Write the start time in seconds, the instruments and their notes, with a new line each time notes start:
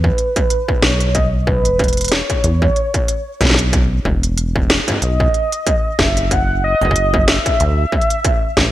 Already playing: acid bass E2, soft synth lead B4
0.04 kick
0.18 closed hi-hat
0.36 kick, closed hi-hat
0.50 closed hi-hat
0.68 kick
0.82 acid bass B1, soft synth lead C#5, snare, closed hi-hat
1.00 closed hi-hat
1.15 soft synth lead D#5, kick, closed hi-hat
1.47 soft synth lead B4, kick
1.65 acid bass E1, closed hi-hat
1.79 kick, closed hi-hat
1.84 closed hi-hat
1.88 closed hi-hat
1.93 closed hi-hat
1.97 closed hi-hat
2.01 closed hi-hat
2.04 closed hi-hat
2.08 soft synth lead C#5, snare, closed hi-hat
2.12 closed hi-hat
2.30 kick, closed hi-hat
2.44 acid bass E2, closed hi-hat
2.62 kick
2.76 closed hi-hat
2.94 kick, closed hi-hat
3.08 closed hi-hat
3.41 acid bass B1, kick, snare, closed hi-hat
3.45 snare
3.50 snare
3.54 snare
3.59 closed hi-hat
3.73 kick, closed hi-hat
4.05 acid bass E1, kick
4.23 closed hi-hat
4.38 closed hi-hat
4.56 kick
4.70 snare, closed hi-hat
4.88 kick, closed hi-hat
4.90 kick
4.92 kick
4.94 kick
4.96 kick
4.98 kick
5.00 acid bass B1, soft synth lead D#5, kick, closed hi-hat
5.20 kick
5.34 closed hi-hat
5.52 closed hi-hat
5.67 kick, closed hi-hat
5.99 acid bass F#1, soft synth lead E5, kick, snare, closed hi-hat
6.17 closed hi-hat
6.31 soft synth lead F#5, kick, closed hi-hat
6.64 soft synth lead D#5
6.81 acid bass F#1, kick, closed hi-hat
6.85 kick
6.91 kick
6.96 closed hi-hat
7.14 kick
7.28 snare, closed hi-hat
7.46 kick, closed hi-hat
7.60 acid bass D2, closed hi-hat
7.92 kick
8.01 closed hi-hat
8.10 closed hi-hat
8.25 kick, closed hi-hat
8.57 acid bass A1, kick, snare, closed hi-hat